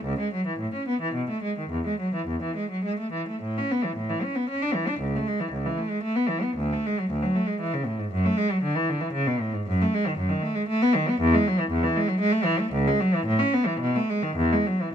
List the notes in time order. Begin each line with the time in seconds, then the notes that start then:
0.05 C#2
0.20 G#3
0.34 F#3
0.47 E3
0.59 A2
0.74 C#4
0.88 B3
1.02 E3
1.15 B2
1.30 A3
1.43 G#3
1.59 D#3
1.71 E2
1.87 G#3
2.00 F#3
2.15 E3
2.28 E2
2.43 E3
2.56 G#3
2.71 F#3
2.85 G#3
3.00 A3
3.13 E3
3.29 A3
3.42 A2
3.58 C#4
3.71 B3
3.85 E3
3.96 A2
4.09 E3
4.23 C#4
4.36 B3
4.50 C#4
4.62 D4
4.75 E3
4.88 D4
5.00 C#2
5.16 A3
5.28 G#3
5.40 E3
5.52 C#2
5.65 E3
5.78 A3
5.90 G#3
6.03 A3
6.16 B3
6.29 E3
6.43 B3
6.57 D2
6.73 A3
6.87 G#3
6.99 F#3
7.11 D2
7.23 F#3
7.35 A3
7.47 G#3
7.61 E3
7.74 C#3
7.86 A2
7.99 G#2
8.12 F#2
8.26 A3
8.38 G#3
8.52 F#3
8.63 D3
8.76 E3
8.90 D3
9.01 E3
9.13 C#3
9.27 B2
9.41 A2
9.54 G#2
9.67 F#2
9.82 A3
9.95 G#3
10.08 D#3
10.18 F#2
10.29 D#3
10.42 A3
10.55 G#3
10.68 A3
10.82 B3
10.96 D#3
11.09 B3
11.20 E2
11.34 G#3
11.48 F#3
11.60 E3
11.70 E2
11.83 E3
11.96 G#3
12.08 F#3
12.20 G#3
12.32 A3
12.45 E3
12.60 A3
12.72 C#2
12.88 G#3
13.01 F#3
13.15 E3
13.26 A2
13.39 C#4
13.54 B3
13.66 E3
13.80 B2
13.96 A3
14.10 G#3
14.23 D#3
14.37 E2
14.53 G#3
14.67 F#3
14.82 E3